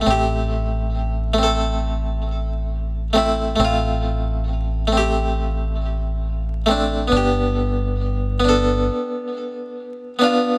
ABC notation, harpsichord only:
X:1
M:4/4
L:1/8
Q:"Swing 16ths" 1/4=68
K:Am
V:1 name="Harpsichord"
[A,CG]3 [A,CA]4 [A,CE] | [A,CF]3 [A,CG]4 [A,CD] | [B,DG]3 [B,DA]4 [B,DF] |]